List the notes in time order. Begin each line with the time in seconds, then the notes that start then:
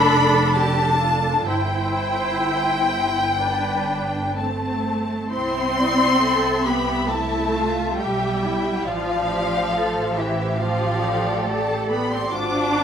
Already playing: F1 D4 A4 B5
0.54 G4 A5
1.00 F4
1.47 G1 E4 C5 G5
2.43 E4
3.41 D4 B4
4.37 A3 C4 A5
5.32 C2 C4 E4 C5 C6
5.78 D5
6.22 A4 E5
6.66 B3 G4 B5
7.10 A3 E4 A5
7.53 F4
7.98 B1 G3 G4 E5 G5
8.42 E4
8.86 A1 F3 F4 D5 F5
9.29 F4 G4
9.74 A4 C5
10.16 E3 G4 E5
10.57 F3 F4 C5 F5
11.02 A4 D5
11.46 A3 A5
11.90 B3 B5
12.12 C4 C6
12.31 G#1 D4 F4 F#4 C5 D6
12.73 D#4